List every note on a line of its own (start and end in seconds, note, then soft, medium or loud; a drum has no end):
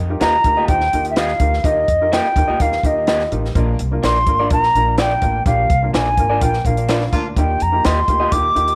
0.00 0.17 F2 medium
0.09 0.30 D#4 medium
0.09 0.30 F4 medium
0.09 0.30 G4 medium
0.09 0.31 A#4 medium
0.20 0.41 D#2 medium
0.20 0.34 A#3 medium
0.20 0.35 F4 medium
0.20 0.35 G4 medium
0.20 0.35 D#5 medium
0.20 0.66 A#5 loud
0.20 snare loud
0.20 closed hi-hat medium
0.44 0.65 D2 medium
0.44 0.59 D#4 medium
0.44 0.59 F4 medium
0.44 0.59 G4 medium
0.44 0.59 A#4 medium
0.44 kick medium
0.44 closed hi-hat medium
0.57 0.69 A#3 soft
0.57 0.68 F4 soft
0.57 0.68 G4 medium
0.57 0.68 D#5 medium
0.68 0.89 D#2 medium
0.68 0.82 D#4 medium
0.68 0.83 F4 medium
0.68 0.83 G4 medium
0.68 0.83 C5 medium
0.68 1.06 G5 loud
0.68 kick medium
0.68 closed hi-hat medium
0.81 snare soft
0.93 1.33 D#2 medium
0.93 1.21 D#4 medium
0.93 1.21 F4 medium
0.93 1.21 G4 medium
0.93 1.21 A#4 medium
0.93 closed hi-hat medium
1.05 closed hi-hat soft
1.11 1.19 E5 medium
1.16 1.30 A#3 medium
1.16 1.30 F4 medium
1.16 1.30 G4 medium
1.16 1.31 D#5 medium
1.16 1.67 F5 medium
1.16 snare loud
1.16 closed hi-hat medium
1.28 snare soft
1.39 1.60 D2 medium
1.39 1.54 D#4 medium
1.39 1.54 F4 medium
1.39 1.54 G4 medium
1.39 1.55 A#4 medium
1.39 kick medium
1.39 closed hi-hat medium
1.53 snare soft
1.63 1.84 D#2 loud
1.63 1.85 D#4 medium
1.63 1.85 F4 medium
1.63 1.85 G4 medium
1.63 1.85 A#4 medium
1.63 2.14 D#5 medium
1.63 kick loud
1.63 closed hi-hat medium
1.88 2.19 F2 medium
1.88 kick medium
1.88 closed hi-hat medium
2.01 2.21 D#4 medium
2.01 2.22 F4 medium
2.01 2.22 G4 medium
2.01 2.22 A#4 medium
2.12 2.26 A#3 medium
2.12 2.26 F4 medium
2.12 2.26 G4 medium
2.12 2.27 D#5 medium
2.12 2.63 G5 loud
2.12 snare loud
2.12 closed hi-hat medium
2.36 2.46 D#2 medium
2.36 2.50 D#4 medium
2.36 2.50 F4 medium
2.36 2.50 G4 medium
2.36 2.51 A#4 medium
2.36 kick medium
2.36 closed hi-hat medium
2.48 2.58 D2 medium
2.48 2.59 A#3 medium
2.48 2.59 F4 medium
2.48 2.59 G4 medium
2.48 2.58 D#5 medium
2.60 2.80 D#2 medium
2.60 2.74 D#4 medium
2.60 2.74 F4 medium
2.60 2.74 G4 medium
2.60 2.74 A#4 medium
2.60 2.87 F5 medium
2.60 kick medium
2.60 closed hi-hat medium
2.72 snare soft
2.83 3.24 D#2 medium
2.83 3.11 D#4 medium
2.83 3.12 F4 medium
2.83 3.12 G4 medium
2.83 3.12 A#4 medium
2.83 3.32 D#5 medium
2.83 kick medium
2.83 closed hi-hat medium
3.07 3.21 A#3 medium
3.07 3.21 F4 medium
3.07 3.22 G4 medium
3.07 3.22 D#5 medium
3.07 snare loud
3.07 closed hi-hat medium
3.20 snare soft
3.31 3.52 A1 medium
3.31 3.45 D#4 medium
3.31 3.45 F4 medium
3.31 3.45 G4 medium
3.31 3.46 A#4 medium
3.31 closed hi-hat medium
3.45 snare soft
3.55 3.75 A#1 loud
3.55 3.76 A#3 medium
3.55 3.76 D4 medium
3.55 3.76 F4 medium
3.55 3.76 A#4 medium
3.55 kick loud
3.55 closed hi-hat medium
3.79 4.00 C2 loud
3.79 closed hi-hat medium
3.91 4.12 A#3 medium
3.91 4.12 D4 medium
3.91 4.12 F4 medium
3.91 4.13 A#4 medium
4.03 4.23 A#1 medium
4.03 4.16 D4 medium
4.03 4.17 F4 medium
4.03 4.17 A#4 medium
4.03 4.17 D5 medium
4.03 4.48 C6 loud
4.03 snare loud
4.03 closed hi-hat medium
4.26 4.47 G#1 medium
4.26 4.41 A#3 medium
4.26 4.41 D4 medium
4.26 4.41 F4 medium
4.26 4.42 A#4 medium
4.26 kick medium
4.26 closed hi-hat medium
4.39 4.51 D4 medium
4.39 4.50 F4 medium
4.39 4.50 A#4 medium
4.39 4.50 D5 medium
4.50 4.71 A#1 medium
4.50 4.64 A#3 medium
4.50 4.65 D4 medium
4.50 4.65 F4 medium
4.50 4.65 A#4 medium
4.50 4.96 A#5 loud
4.50 kick loud
4.50 closed hi-hat medium
4.63 snare soft
4.75 5.15 A#1 medium
4.75 5.03 A#3 medium
4.75 5.03 D4 medium
4.75 5.03 F4 medium
4.75 5.03 A#4 medium
4.75 closed hi-hat medium
4.97 5.12 D4 medium
4.97 5.12 F4 medium
4.97 5.12 A#4 medium
4.97 5.12 D5 loud
4.97 5.44 G5 loud
4.97 snare loud
4.97 closed hi-hat medium
5.21 5.42 A1 medium
5.21 5.36 A#3 medium
5.21 5.36 D4 medium
5.21 5.36 F4 medium
5.21 5.36 A#4 medium
5.21 kick medium
5.21 closed hi-hat medium
5.46 5.66 A#1 loud
5.46 5.67 A#3 medium
5.46 5.67 D4 medium
5.46 5.67 F4 medium
5.46 5.67 G4 medium
5.46 5.91 F5 medium
5.46 kick loud
5.46 closed hi-hat medium
5.70 5.90 C2 medium
5.70 kick medium
5.70 closed hi-hat medium
5.82 6.03 A#3 medium
5.82 6.03 D4 medium
5.82 6.03 F4 medium
5.82 6.03 A#4 medium
5.94 6.14 A#1 medium
5.94 6.07 D4 medium
5.94 6.07 F4 medium
5.94 6.08 A#4 medium
5.94 6.08 D5 medium
5.94 6.43 G#5 medium
5.94 snare loud
5.94 closed hi-hat medium
6.17 6.38 G#1 medium
6.17 6.32 A#3 medium
6.17 6.32 D4 medium
6.17 6.32 F4 medium
6.17 6.32 A#4 medium
6.17 kick medium
6.17 closed hi-hat medium
6.30 6.41 D4 soft
6.30 6.41 F4 medium
6.30 6.40 A#4 medium
6.30 6.40 D5 medium
6.40 6.62 A#1 medium
6.40 6.55 A#3 medium
6.40 6.51 A#3 medium
6.40 6.55 D4 medium
6.40 6.52 D4 medium
6.40 6.51 F4 medium
6.40 6.55 F4 medium
6.40 6.56 A#4 medium
6.40 6.68 G5 medium
6.40 kick medium
6.40 closed hi-hat loud
6.53 snare soft
6.65 7.05 A#1 medium
6.65 6.93 A#3 medium
6.65 6.93 D4 medium
6.65 6.93 F4 medium
6.65 6.94 A#4 medium
6.65 7.13 F5 medium
6.65 kick medium
6.65 closed hi-hat medium
6.77 closed hi-hat medium
6.88 6.99 A#3 medium
6.88 7.02 D4 medium
6.88 6.99 D4 medium
6.88 6.99 F4 medium
6.88 7.03 F4 medium
6.88 7.03 A#4 medium
6.88 7.03 D5 medium
6.88 snare loud
6.88 closed hi-hat medium
7.01 snare soft
7.12 7.33 D2 medium
7.12 7.27 A#3 medium
7.12 7.28 D4 medium
7.12 7.27 D4 medium
7.12 7.28 F4 loud
7.12 7.27 F4 medium
7.12 7.27 A#4 medium
7.12 kick medium
7.12 closed hi-hat medium
7.36 7.57 D#2 loud
7.36 7.58 A#3 medium
7.36 7.58 D#4 medium
7.36 7.58 F4 medium
7.36 7.58 G4 medium
7.36 7.64 G5 medium
7.36 kick loud
7.36 closed hi-hat medium
7.60 7.81 F2 medium
7.60 7.87 A#5 medium
7.60 closed hi-hat medium
7.72 7.93 A#3 medium
7.72 7.93 D#4 medium
7.72 7.93 F4 medium
7.72 7.94 G4 medium
7.84 8.05 D#2 medium
7.84 7.98 A#3 medium
7.84 7.98 F4 medium
7.84 7.98 G4 medium
7.84 7.99 D#5 medium
7.84 8.34 C6 medium
7.84 snare loud
7.84 closed hi-hat medium
8.08 8.28 D2 medium
8.08 8.22 A#3 medium
8.08 8.22 D#4 medium
8.08 8.22 F4 medium
8.08 8.22 G4 medium
8.08 kick medium
8.08 closed hi-hat medium
8.20 8.31 A#3 soft
8.20 8.31 F4 soft
8.20 8.31 G4 medium
8.20 8.31 D#5 medium
8.32 8.52 D#2 medium
8.32 8.46 A#3 medium
8.32 8.46 D#4 medium
8.32 8.46 F4 medium
8.32 8.46 G4 medium
8.32 8.75 D6 loud
8.32 kick loud
8.32 closed hi-hat loud
8.55 8.75 D#2 medium
8.55 8.75 A#3 medium
8.55 8.75 D#4 medium
8.55 8.75 F4 medium
8.55 8.75 G4 medium
8.55 closed hi-hat medium
8.68 closed hi-hat soft